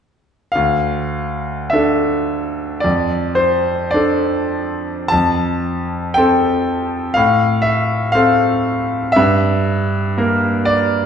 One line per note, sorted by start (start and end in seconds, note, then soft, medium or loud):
0.52 2.80 D2 soft
0.52 1.73 F5 medium
1.70 2.80 D4 soft
1.70 2.80 A4 soft
1.70 2.82 E5 medium
2.80 5.08 F2 soft
2.80 3.37 D5 medium
3.35 3.92 C5 medium
3.91 5.08 D4 soft
3.91 5.09 A4 soft
3.91 5.11 D5 medium
5.08 7.13 F2 soft
5.08 6.16 A5 medium
6.14 7.13 C4 soft
6.14 7.13 A4 soft
6.14 7.16 G5 medium
7.14 9.13 A2 medium
7.14 7.64 F5 medium
7.62 8.14 E5 medium
8.12 9.13 C4 soft
8.12 9.14 A4 soft
8.12 9.16 F5 medium
9.12 10.69 E5 medium
9.16 11.06 G2 medium
10.18 11.06 A#3 soft
10.18 11.06 A#4 soft
10.65 11.06 D5 medium